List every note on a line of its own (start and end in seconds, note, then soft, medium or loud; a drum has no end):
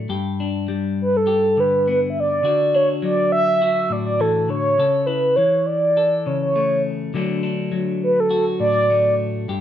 0.00 0.40 D4 medium
0.09 2.41 G2 medium
0.09 1.26 G4 medium
0.40 2.42 D4 medium
0.68 2.41 G3 medium
1.02 1.18 B4 medium
1.17 1.61 A4 medium
1.27 2.41 G4 medium
1.57 2.42 D3 medium
1.57 1.87 B4 medium
1.88 2.42 B3 medium
1.88 2.00 B4 medium
2.10 2.21 E5 medium
2.20 2.75 D5 loud
2.43 4.48 D3 medium
2.43 3.61 F#4 medium
2.74 4.76 D4 medium
2.74 2.88 C#5 medium
3.02 4.20 F#3 medium
3.02 3.31 D5 loud
3.32 3.94 E5 loud
3.62 4.79 F#4 medium
3.90 4.75 A2 medium
3.90 4.06 D5 loud
4.06 4.22 D5 medium
4.20 4.50 E3 medium
4.20 4.50 A4 medium
4.49 4.78 D3 medium
4.49 5.08 C#5 medium
4.78 5.37 C#3 medium
4.78 5.97 A4 medium
5.06 7.10 E4 medium
5.06 5.37 B4 medium
5.36 7.13 E3 medium
5.36 5.68 C#5 medium
5.66 6.28 D5 loud
5.97 7.11 A4 medium
6.26 7.11 C#3 medium
6.26 6.42 C#5 medium
6.43 6.82 C#5 medium
6.56 7.14 A3 medium
7.14 9.45 D3 medium
7.14 7.70 F#3 medium
7.14 8.89 A3 medium
7.14 7.42 D4 medium
7.14 muted clean electric guitar stroke medium
7.43 9.45 D4 medium
7.72 9.45 F#3 medium
8.03 8.21 B4 medium
8.20 8.32 A4 medium
8.31 9.48 F#4 medium
8.31 8.45 A4 medium
8.60 9.45 A2 medium
8.60 9.15 D5 loud
8.90 9.48 A3 medium
9.48 9.61 G2 medium
9.48 9.61 G4 medium